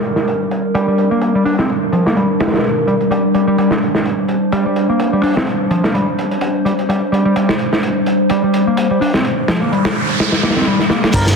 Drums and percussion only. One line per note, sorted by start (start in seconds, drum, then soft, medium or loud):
0.03 closed hi-hat medium
0.16 snare soft
0.27 closed hi-hat medium
0.51 closed hi-hat medium
0.75 closed hi-hat medium
0.98 closed hi-hat medium
1.21 closed hi-hat medium
1.46 open hi-hat medium
1.59 snare medium
1.70 closed hi-hat medium
1.93 closed hi-hat medium
2.07 snare soft
2.17 closed hi-hat medium
2.40 snare medium
2.40 closed hi-hat medium
2.47 snare medium
2.47 closed hi-hat medium
2.54 snare medium
2.54 closed hi-hat medium
2.58 snare medium
2.58 closed hi-hat medium
2.64 closed hi-hat medium
2.88 closed hi-hat medium
3.00 closed hi-hat soft
3.11 closed hi-hat medium
3.34 closed hi-hat medium
3.58 closed hi-hat medium
3.71 snare soft
3.82 closed hi-hat medium
3.95 snare soft
4.05 closed hi-hat medium
4.28 closed hi-hat medium
4.52 closed hi-hat medium
4.76 closed hi-hat medium
4.99 closed hi-hat medium
5.23 open hi-hat medium
5.37 snare medium
5.47 closed hi-hat medium
5.71 closed hi-hat medium
5.84 snare soft
5.95 closed hi-hat medium
6.18 closed hi-hat medium
6.31 closed hi-hat soft
6.41 closed hi-hat medium
6.66 closed hi-hat medium
6.79 closed hi-hat soft
6.90 closed hi-hat medium
7.14 closed hi-hat medium
7.36 closed hi-hat medium
7.49 snare medium
7.59 closed hi-hat medium
7.73 snare soft
7.83 closed hi-hat medium
8.06 closed hi-hat medium
8.29 closed hi-hat medium
8.54 closed hi-hat medium
8.77 closed hi-hat medium
9.02 open hi-hat medium
9.14 snare soft
9.25 closed hi-hat medium
9.48 snare medium
9.48 closed hi-hat medium
9.73 closed hi-hat medium
9.85 snare loud
9.85 closed hi-hat medium
10.09 closed hi-hat medium
10.20 snare medium
10.20 closed hi-hat medium
10.32 snare medium
10.32 closed hi-hat medium
10.43 snare medium
10.43 closed hi-hat medium
10.50 snare medium
10.50 closed hi-hat medium
10.56 snare medium
10.56 closed hi-hat medium
10.61 snare medium
10.61 closed hi-hat medium
10.67 closed hi-hat medium
10.79 snare soft
10.90 snare medium
10.90 closed hi-hat medium
11.04 snare loud
11.04 closed hi-hat medium
11.14 kick loud
11.14 closed hi-hat medium
11.14 closed hi-hat soft
11.14 crash medium
11.27 snare medium